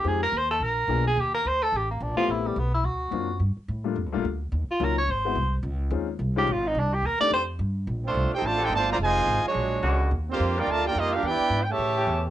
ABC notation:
X:1
M:4/4
L:1/16
Q:"Swing" 1/4=215
K:Eblyd
V:1 name="Trumpet section"
z16 | z16 | z16 | z16 |
z16 | z16 | z16 | z2 [A,DFc]4 [EAcg]2 [Fcda]2 [EAcg]2 [Fcda]2 [Fcdb]2 |
[Fce_a]6 [_A,D_G_d]8 z2 | z2 [B,FGc]4 [FBdg]2 [FBda]2 [FBdg]2 [B,FGe]2 [DGBf]2 | [=E=Bdg]4- [EBdg] g [G_d=ea]8 z2 |]
V:2 name="Tenor saxophone"
_A2 B2 c2 =A2 B6 _A2 | G2 B2 c2 A2 G2 B,2 D2 F2 | =E2 G,2 =B,2 E2 ^F8 | z16 |
z2 F2 B2 _d2 c6 z2 | z8 z2 G2 F2 E2 | D2 G2 B2 d2 c2 z6 | z16 |
z16 | z16 | z16 |]
V:3 name="Grand piano"
[_A,CEFG]2 z8 z2 [B,_CDF_A]2 z2 | z12 z2 [A,_C=C=EG]2- | [A,_C=C=EG]4 z8 [^F,^A,CD^E]2 z2 | z6 [G,A,B,DF]2 z2 [G,A,B,DF]2 z4 |
z4 [_G,B,_DEF]2 z4 [_A,=B,C=E_G]2 z4 | z4 [_A,C_DEF]2 z4 [A,CDEF]2 z4 | z6 [A,CDEG]2 z8 | z16 |
z16 | z16 | z16 |]
V:4 name="Trombone section"
z16 | z16 | z16 | z16 |
z16 | z16 | z16 | z8 z2 [D,B,CA]6 |
z12 [D,_A,B,^F]4 | z6 [E,G,DF]6 z4 | z8 z2 [=E,A,^CG]6 |]
V:5 name="Trombone section"
z16 | z16 | z16 | z16 |
z16 | z16 | z16 | z2 [F,A,C]4 G2 [D,F,A,]2 G2 [D,F,A,]2 [D,F,B,]2 |
[C,E,_A,]6 [_G,A,]8 z2 | z2 [D,G,C]4 [B,DG]2 A,2 [B,DG]2 [G,B,E]2 [B,DF]2 | [=B,DG]4- [B,DG] z [_D,=E,A,]8 z2 |]
V:6 name="Upright bass" clef=bass
F,,4 E,,4 B,,,4 _C,,4 | E,,4 D,,4 A,,,4 B,,,2 z2 | A,,,4 =B,,,4 D,,4 ^F,,4 | G,,2 z2 A,,4 (3F,,2 D,,2 B,,,2 D,,4 |
E,,2 z2 _D,,4 _A,,,4 C,,4 | _D,,4 E,,4 C,,4 _A,,,4 | C,,4 E,,2 z2 F,,4 G,,4 | B,,,4 C,,2 z2 A,,,4 G,,,4 |
F,,,4 _A,,,2 z2 B,,,4 ^C,,4 | E,,4 F,,4 D,,4 F,,4 | =E,,2 z2 _A,,4 =A,,4 E,,4 |]